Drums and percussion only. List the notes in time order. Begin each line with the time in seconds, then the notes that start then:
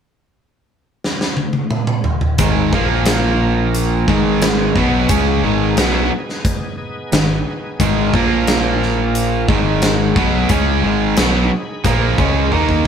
1.04 snare
1.21 snare
1.37 high tom
1.53 high tom
1.71 mid tom
1.87 mid tom
2.04 floor tom
2.21 floor tom
2.38 kick, closed hi-hat
2.73 kick
3.06 snare, closed hi-hat
3.75 closed hi-hat
4.08 kick
4.42 snare, closed hi-hat
4.76 kick
5.09 kick, closed hi-hat
5.77 snare, closed hi-hat
6.29 snare
6.45 kick, closed hi-hat
7.12 snare, closed hi-hat
7.80 kick, closed hi-hat
8.14 kick
8.47 snare, closed hi-hat
8.82 snare
9.15 closed hi-hat
9.49 kick
9.82 snare, closed hi-hat
10.16 kick
10.49 kick, closed hi-hat
11.17 snare, closed hi-hat
11.85 kick, closed hi-hat
12.18 kick
12.52 kick
12.69 kick